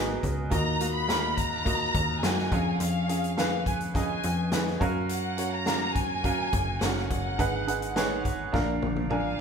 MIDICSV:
0, 0, Header, 1, 5, 480
1, 0, Start_track
1, 0, Key_signature, -6, "minor"
1, 0, Tempo, 573066
1, 431, Time_signature, 4, 2, 24, 8
1, 7878, End_track
2, 0, Start_track
2, 0, Title_t, "Violin section"
2, 0, Program_c, 0, 48
2, 432, Note_on_c, 0, 82, 91
2, 766, Note_off_c, 0, 82, 0
2, 801, Note_on_c, 0, 83, 90
2, 1150, Note_on_c, 0, 82, 98
2, 1155, Note_off_c, 0, 83, 0
2, 1869, Note_on_c, 0, 80, 78
2, 1870, Note_off_c, 0, 82, 0
2, 2339, Note_on_c, 0, 77, 83
2, 2349, Note_off_c, 0, 80, 0
2, 2810, Note_off_c, 0, 77, 0
2, 2820, Note_on_c, 0, 77, 79
2, 3048, Note_off_c, 0, 77, 0
2, 3063, Note_on_c, 0, 80, 74
2, 3172, Note_off_c, 0, 80, 0
2, 3305, Note_on_c, 0, 80, 76
2, 3994, Note_off_c, 0, 80, 0
2, 4280, Note_on_c, 0, 78, 74
2, 4610, Note_off_c, 0, 78, 0
2, 4623, Note_on_c, 0, 82, 89
2, 4984, Note_on_c, 0, 80, 97
2, 4987, Note_off_c, 0, 82, 0
2, 5706, Note_on_c, 0, 78, 73
2, 5707, Note_off_c, 0, 80, 0
2, 5927, Note_off_c, 0, 78, 0
2, 5937, Note_on_c, 0, 78, 73
2, 6630, Note_off_c, 0, 78, 0
2, 7643, Note_on_c, 0, 77, 67
2, 7878, Note_off_c, 0, 77, 0
2, 7878, End_track
3, 0, Start_track
3, 0, Title_t, "Upright piano"
3, 0, Program_c, 1, 0
3, 0, Control_c, 1, 64, 127
3, 0, Note_on_c, 1, 44, 51
3, 0, Note_on_c, 1, 59, 65
3, 0, Note_on_c, 1, 66, 62
3, 0, Note_on_c, 1, 68, 62
3, 0, Note_on_c, 1, 70, 81
3, 0, Note_on_c, 1, 75, 71
3, 345, Note_off_c, 1, 59, 0
3, 347, Note_off_c, 1, 66, 0
3, 348, Note_off_c, 1, 68, 0
3, 351, Note_off_c, 1, 75, 0
3, 420, Note_on_c, 1, 58, 70
3, 423, Note_on_c, 1, 65, 67
3, 427, Note_on_c, 1, 51, 50
3, 429, Note_on_c, 1, 66, 64
3, 434, Note_on_c, 1, 75, 79
3, 439, Control_c, 1, 64, 0
3, 442, Note_off_c, 1, 70, 0
3, 444, Note_off_c, 1, 44, 0
3, 583, Control_c, 1, 64, 127
3, 624, Note_off_c, 1, 58, 0
3, 626, Note_off_c, 1, 65, 0
3, 629, Note_off_c, 1, 66, 0
3, 631, Note_off_c, 1, 75, 0
3, 667, Note_on_c, 1, 58, 53
3, 673, Note_on_c, 1, 65, 49
3, 674, Note_on_c, 1, 66, 51
3, 680, Note_on_c, 1, 77, 55
3, 868, Note_off_c, 1, 58, 0
3, 871, Note_off_c, 1, 65, 0
3, 871, Note_off_c, 1, 66, 0
3, 874, Note_off_c, 1, 77, 0
3, 903, Note_on_c, 1, 58, 62
3, 909, Note_on_c, 1, 65, 59
3, 912, Note_on_c, 1, 66, 59
3, 918, Note_on_c, 1, 70, 67
3, 1115, Note_off_c, 1, 51, 0
3, 1305, Note_off_c, 1, 58, 0
3, 1307, Note_off_c, 1, 65, 0
3, 1309, Note_off_c, 1, 66, 0
3, 1312, Note_off_c, 1, 70, 0
3, 1381, Note_on_c, 1, 58, 64
3, 1385, Note_on_c, 1, 65, 59
3, 1390, Note_on_c, 1, 66, 58
3, 1397, Note_on_c, 1, 75, 70
3, 1783, Note_off_c, 1, 58, 0
3, 1785, Note_off_c, 1, 65, 0
3, 1788, Note_off_c, 1, 66, 0
3, 1792, Note_off_c, 1, 75, 0
3, 1867, Note_on_c, 1, 58, 58
3, 1873, Note_on_c, 1, 65, 53
3, 1878, Note_on_c, 1, 66, 52
3, 1880, Note_on_c, 1, 78, 64
3, 2097, Note_off_c, 1, 65, 0
3, 2107, Note_on_c, 1, 61, 65
3, 2108, Note_off_c, 1, 58, 0
3, 2110, Note_on_c, 1, 65, 63
3, 2114, Note_off_c, 1, 66, 0
3, 2115, Note_off_c, 1, 78, 0
3, 2116, Note_on_c, 1, 68, 64
3, 2122, Control_c, 1, 64, 0
3, 2122, Note_on_c, 1, 77, 68
3, 2270, Control_c, 1, 64, 127
3, 2506, Note_off_c, 1, 61, 0
3, 2508, Note_off_c, 1, 65, 0
3, 2511, Note_off_c, 1, 68, 0
3, 2514, Note_off_c, 1, 77, 0
3, 2580, Note_on_c, 1, 61, 57
3, 2585, Note_on_c, 1, 65, 49
3, 2591, Note_on_c, 1, 68, 51
3, 2594, Note_on_c, 1, 77, 61
3, 2784, Note_off_c, 1, 61, 0
3, 2786, Note_off_c, 1, 65, 0
3, 2789, Note_off_c, 1, 68, 0
3, 2791, Note_off_c, 1, 77, 0
3, 2824, Note_on_c, 1, 61, 64
3, 2829, Note_on_c, 1, 65, 59
3, 2833, Note_on_c, 1, 68, 57
3, 2837, Note_on_c, 1, 71, 69
3, 3225, Note_off_c, 1, 61, 0
3, 3227, Note_off_c, 1, 65, 0
3, 3229, Note_off_c, 1, 68, 0
3, 3231, Note_off_c, 1, 71, 0
3, 3301, Note_on_c, 1, 61, 58
3, 3308, Note_on_c, 1, 65, 57
3, 3312, Note_on_c, 1, 68, 58
3, 3316, Note_on_c, 1, 75, 72
3, 3703, Note_off_c, 1, 61, 0
3, 3707, Note_off_c, 1, 65, 0
3, 3709, Note_off_c, 1, 68, 0
3, 3711, Note_off_c, 1, 75, 0
3, 3783, Note_on_c, 1, 61, 59
3, 3787, Note_on_c, 1, 65, 57
3, 3794, Note_on_c, 1, 68, 58
3, 3798, Note_on_c, 1, 71, 65
3, 4008, Note_off_c, 1, 61, 0
3, 4020, Note_on_c, 1, 61, 81
3, 4027, Note_on_c, 1, 66, 75
3, 4027, Note_on_c, 1, 70, 78
3, 4028, Note_off_c, 1, 65, 0
3, 4032, Note_off_c, 1, 68, 0
3, 4033, Note_off_c, 1, 71, 0
3, 4034, Note_on_c, 1, 77, 88
3, 4040, Control_c, 1, 64, 0
3, 4194, Control_c, 1, 64, 127
3, 4423, Note_off_c, 1, 61, 0
3, 4426, Note_off_c, 1, 66, 0
3, 4426, Note_off_c, 1, 70, 0
3, 4430, Note_off_c, 1, 77, 0
3, 4502, Note_on_c, 1, 61, 58
3, 4506, Note_on_c, 1, 66, 47
3, 4508, Note_on_c, 1, 70, 45
3, 4513, Note_on_c, 1, 73, 59
3, 4705, Note_off_c, 1, 61, 0
3, 4707, Note_off_c, 1, 66, 0
3, 4708, Note_off_c, 1, 70, 0
3, 4710, Note_off_c, 1, 73, 0
3, 4740, Note_on_c, 1, 61, 67
3, 4743, Note_on_c, 1, 66, 58
3, 4747, Note_on_c, 1, 70, 58
3, 4749, Note_on_c, 1, 77, 73
3, 5143, Note_off_c, 1, 61, 0
3, 5144, Note_off_c, 1, 66, 0
3, 5146, Note_off_c, 1, 70, 0
3, 5148, Note_off_c, 1, 77, 0
3, 5224, Note_on_c, 1, 61, 63
3, 5228, Note_on_c, 1, 66, 58
3, 5229, Note_on_c, 1, 70, 59
3, 5238, Note_on_c, 1, 77, 67
3, 5625, Note_off_c, 1, 61, 0
3, 5627, Note_off_c, 1, 66, 0
3, 5628, Note_off_c, 1, 70, 0
3, 5632, Note_off_c, 1, 77, 0
3, 5709, Note_on_c, 1, 61, 61
3, 5712, Note_on_c, 1, 66, 58
3, 5717, Note_on_c, 1, 70, 58
3, 5722, Note_on_c, 1, 73, 65
3, 6107, Note_off_c, 1, 61, 0
3, 6109, Note_off_c, 1, 66, 0
3, 6112, Note_off_c, 1, 70, 0
3, 6114, Note_off_c, 1, 73, 0
3, 6186, Note_on_c, 1, 63, 76
3, 6189, Note_on_c, 1, 68, 70
3, 6192, Note_on_c, 1, 44, 53
3, 6193, Note_on_c, 1, 71, 74
3, 6198, Note_on_c, 1, 78, 85
3, 6201, Control_c, 1, 64, 0
3, 6358, Control_c, 1, 64, 127
3, 6387, Note_off_c, 1, 63, 0
3, 6389, Note_off_c, 1, 68, 0
3, 6391, Note_off_c, 1, 71, 0
3, 6393, Note_off_c, 1, 78, 0
3, 6427, Note_on_c, 1, 63, 53
3, 6430, Note_on_c, 1, 68, 50
3, 6436, Note_on_c, 1, 71, 53
3, 6441, Note_on_c, 1, 78, 63
3, 6628, Note_off_c, 1, 63, 0
3, 6629, Note_off_c, 1, 68, 0
3, 6632, Note_off_c, 1, 71, 0
3, 6635, Note_off_c, 1, 78, 0
3, 6665, Note_on_c, 1, 63, 69
3, 6670, Note_on_c, 1, 68, 63
3, 6675, Note_on_c, 1, 71, 70
3, 6679, Note_on_c, 1, 73, 82
3, 6878, Note_off_c, 1, 44, 0
3, 7066, Note_off_c, 1, 63, 0
3, 7068, Note_off_c, 1, 68, 0
3, 7071, Note_off_c, 1, 71, 0
3, 7073, Note_off_c, 1, 73, 0
3, 7139, Note_on_c, 1, 62, 77
3, 7145, Note_on_c, 1, 65, 66
3, 7145, Note_on_c, 1, 70, 68
3, 7146, Note_on_c, 1, 46, 63
3, 7153, Note_on_c, 1, 77, 76
3, 7162, Control_c, 1, 64, 0
3, 7333, Control_c, 1, 64, 127
3, 7543, Note_off_c, 1, 62, 0
3, 7546, Note_off_c, 1, 65, 0
3, 7546, Note_off_c, 1, 70, 0
3, 7550, Note_off_c, 1, 77, 0
3, 7620, Note_on_c, 1, 62, 67
3, 7624, Note_on_c, 1, 65, 62
3, 7629, Note_on_c, 1, 70, 61
3, 7634, Note_on_c, 1, 80, 70
3, 7835, Note_off_c, 1, 46, 0
3, 7878, Note_off_c, 1, 62, 0
3, 7878, Note_off_c, 1, 65, 0
3, 7878, Note_off_c, 1, 70, 0
3, 7878, Note_off_c, 1, 80, 0
3, 7878, End_track
4, 0, Start_track
4, 0, Title_t, "Analog synth bass"
4, 0, Program_c, 2, 38
4, 0, Note_on_c, 2, 32, 83
4, 157, Note_off_c, 2, 32, 0
4, 199, Note_on_c, 2, 37, 87
4, 418, Note_off_c, 2, 37, 0
4, 431, Note_on_c, 2, 39, 97
4, 1597, Note_off_c, 2, 39, 0
4, 1631, Note_on_c, 2, 39, 83
4, 1853, Note_off_c, 2, 39, 0
4, 1867, Note_on_c, 2, 42, 87
4, 2092, Note_off_c, 2, 42, 0
4, 2111, Note_on_c, 2, 41, 87
4, 2334, Note_off_c, 2, 41, 0
4, 2347, Note_on_c, 2, 41, 93
4, 3515, Note_off_c, 2, 41, 0
4, 3554, Note_on_c, 2, 41, 87
4, 3998, Note_off_c, 2, 41, 0
4, 4032, Note_on_c, 2, 42, 94
4, 5437, Note_off_c, 2, 42, 0
4, 5472, Note_on_c, 2, 30, 85
4, 5694, Note_off_c, 2, 30, 0
4, 5717, Note_on_c, 2, 30, 80
4, 5937, Note_off_c, 2, 30, 0
4, 5952, Note_on_c, 2, 30, 76
4, 6174, Note_off_c, 2, 30, 0
4, 6192, Note_on_c, 2, 32, 92
4, 7118, Note_off_c, 2, 32, 0
4, 7151, Note_on_c, 2, 34, 89
4, 7374, Note_off_c, 2, 34, 0
4, 7393, Note_on_c, 2, 34, 77
4, 7838, Note_off_c, 2, 34, 0
4, 7878, End_track
5, 0, Start_track
5, 0, Title_t, "Drums"
5, 195, Note_on_c, 9, 36, 64
5, 197, Note_on_c, 9, 42, 54
5, 279, Note_off_c, 9, 36, 0
5, 281, Note_off_c, 9, 42, 0
5, 430, Note_on_c, 9, 42, 79
5, 432, Note_on_c, 9, 36, 84
5, 514, Note_off_c, 9, 42, 0
5, 516, Note_off_c, 9, 36, 0
5, 674, Note_on_c, 9, 42, 73
5, 758, Note_off_c, 9, 42, 0
5, 913, Note_on_c, 9, 38, 88
5, 918, Note_on_c, 9, 42, 64
5, 997, Note_off_c, 9, 38, 0
5, 1002, Note_off_c, 9, 42, 0
5, 1152, Note_on_c, 9, 36, 69
5, 1152, Note_on_c, 9, 42, 62
5, 1235, Note_off_c, 9, 36, 0
5, 1235, Note_off_c, 9, 42, 0
5, 1391, Note_on_c, 9, 36, 86
5, 1396, Note_on_c, 9, 42, 70
5, 1475, Note_off_c, 9, 36, 0
5, 1479, Note_off_c, 9, 42, 0
5, 1630, Note_on_c, 9, 36, 84
5, 1630, Note_on_c, 9, 42, 64
5, 1714, Note_off_c, 9, 36, 0
5, 1714, Note_off_c, 9, 42, 0
5, 1869, Note_on_c, 9, 38, 104
5, 1872, Note_on_c, 9, 42, 77
5, 1953, Note_off_c, 9, 38, 0
5, 1956, Note_off_c, 9, 42, 0
5, 1993, Note_on_c, 9, 38, 27
5, 2077, Note_off_c, 9, 38, 0
5, 2109, Note_on_c, 9, 36, 88
5, 2110, Note_on_c, 9, 42, 54
5, 2193, Note_off_c, 9, 36, 0
5, 2194, Note_off_c, 9, 42, 0
5, 2345, Note_on_c, 9, 42, 81
5, 2429, Note_off_c, 9, 42, 0
5, 2590, Note_on_c, 9, 42, 71
5, 2674, Note_off_c, 9, 42, 0
5, 2713, Note_on_c, 9, 42, 38
5, 2797, Note_off_c, 9, 42, 0
5, 2829, Note_on_c, 9, 38, 89
5, 2834, Note_on_c, 9, 42, 67
5, 2913, Note_off_c, 9, 38, 0
5, 2917, Note_off_c, 9, 42, 0
5, 3068, Note_on_c, 9, 36, 75
5, 3071, Note_on_c, 9, 42, 62
5, 3152, Note_off_c, 9, 36, 0
5, 3155, Note_off_c, 9, 42, 0
5, 3187, Note_on_c, 9, 42, 41
5, 3271, Note_off_c, 9, 42, 0
5, 3308, Note_on_c, 9, 36, 85
5, 3312, Note_on_c, 9, 42, 66
5, 3392, Note_off_c, 9, 36, 0
5, 3396, Note_off_c, 9, 42, 0
5, 3546, Note_on_c, 9, 42, 62
5, 3630, Note_off_c, 9, 42, 0
5, 3784, Note_on_c, 9, 38, 106
5, 3787, Note_on_c, 9, 42, 81
5, 3868, Note_off_c, 9, 38, 0
5, 3871, Note_off_c, 9, 42, 0
5, 3907, Note_on_c, 9, 38, 29
5, 3991, Note_off_c, 9, 38, 0
5, 4028, Note_on_c, 9, 36, 88
5, 4032, Note_on_c, 9, 42, 55
5, 4112, Note_off_c, 9, 36, 0
5, 4116, Note_off_c, 9, 42, 0
5, 4266, Note_on_c, 9, 42, 83
5, 4350, Note_off_c, 9, 42, 0
5, 4505, Note_on_c, 9, 42, 74
5, 4589, Note_off_c, 9, 42, 0
5, 4742, Note_on_c, 9, 38, 89
5, 4747, Note_on_c, 9, 42, 66
5, 4825, Note_off_c, 9, 38, 0
5, 4830, Note_off_c, 9, 42, 0
5, 4988, Note_on_c, 9, 36, 80
5, 4988, Note_on_c, 9, 42, 63
5, 5072, Note_off_c, 9, 36, 0
5, 5072, Note_off_c, 9, 42, 0
5, 5229, Note_on_c, 9, 36, 80
5, 5232, Note_on_c, 9, 42, 72
5, 5313, Note_off_c, 9, 36, 0
5, 5315, Note_off_c, 9, 42, 0
5, 5469, Note_on_c, 9, 42, 67
5, 5470, Note_on_c, 9, 36, 87
5, 5553, Note_off_c, 9, 36, 0
5, 5553, Note_off_c, 9, 42, 0
5, 5705, Note_on_c, 9, 38, 103
5, 5709, Note_on_c, 9, 42, 79
5, 5789, Note_off_c, 9, 38, 0
5, 5792, Note_off_c, 9, 42, 0
5, 5827, Note_on_c, 9, 38, 27
5, 5911, Note_off_c, 9, 38, 0
5, 5950, Note_on_c, 9, 42, 55
5, 5952, Note_on_c, 9, 36, 73
5, 6034, Note_off_c, 9, 42, 0
5, 6036, Note_off_c, 9, 36, 0
5, 6191, Note_on_c, 9, 36, 91
5, 6194, Note_on_c, 9, 42, 86
5, 6275, Note_off_c, 9, 36, 0
5, 6277, Note_off_c, 9, 42, 0
5, 6435, Note_on_c, 9, 42, 74
5, 6519, Note_off_c, 9, 42, 0
5, 6551, Note_on_c, 9, 42, 41
5, 6635, Note_off_c, 9, 42, 0
5, 6668, Note_on_c, 9, 38, 100
5, 6673, Note_on_c, 9, 42, 68
5, 6752, Note_off_c, 9, 38, 0
5, 6756, Note_off_c, 9, 42, 0
5, 6911, Note_on_c, 9, 36, 71
5, 6912, Note_on_c, 9, 42, 57
5, 6995, Note_off_c, 9, 36, 0
5, 6996, Note_off_c, 9, 42, 0
5, 7152, Note_on_c, 9, 36, 79
5, 7154, Note_on_c, 9, 38, 45
5, 7235, Note_off_c, 9, 36, 0
5, 7237, Note_off_c, 9, 38, 0
5, 7391, Note_on_c, 9, 48, 56
5, 7475, Note_off_c, 9, 48, 0
5, 7509, Note_on_c, 9, 48, 53
5, 7593, Note_off_c, 9, 48, 0
5, 7627, Note_on_c, 9, 47, 72
5, 7710, Note_off_c, 9, 47, 0
5, 7878, End_track
0, 0, End_of_file